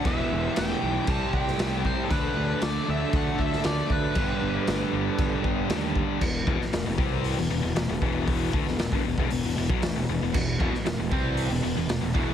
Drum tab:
CC |x---x---x---x---|x---x---x---x---|x---x---x---x---|x---------------|
HH |----------------|----------------|----------------|----o---o---o---|
SD |----o------oo---|----o------oo---|----o-------o---|---oo-------o---|
BD |o-------o-o---o-|o-------o-o---o-|o-------o-o---o-|o-o---o-------o-|

CC |----------------|x---------------|
HH |o---o---o---o---|----o---o---o---|
SD |---oo-------o---|---oo-------o---|
BD |o-o--o-o---o----|o-o---o-------o-|